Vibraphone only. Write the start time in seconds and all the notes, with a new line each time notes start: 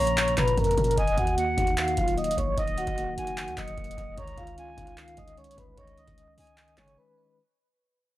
Already playing: C#5 C#6
0.38 B4 B5
0.58 A#4 A#5
0.78 A#4 A#5
0.98 D#5 D#6
1.18 F#4 F#5
1.98 F4 F5
2.17 D#5 D#6
2.38 C#5 C#6
2.57 D#5 D#6
2.78 F#4 F#5
3.58 D#5 D#6
3.98 D#5 D#6
4.17 C#5 C#6
4.37 F4 F5
5.18 D#5 D#6
5.38 C#5 C#6
5.58 B4 B5
5.78 C#5 C#6
5.98 D#5 D#6
6.77 C#5 C#6
6.97 B4 B5
7.17 B4 B5